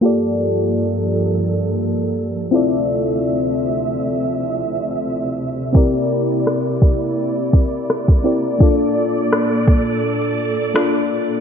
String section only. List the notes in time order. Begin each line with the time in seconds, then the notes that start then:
0.03 G2 F3 A4
2.53 D2 C3 F3 E5
5.75 A#3 E4 D5
8.60 A#2 A4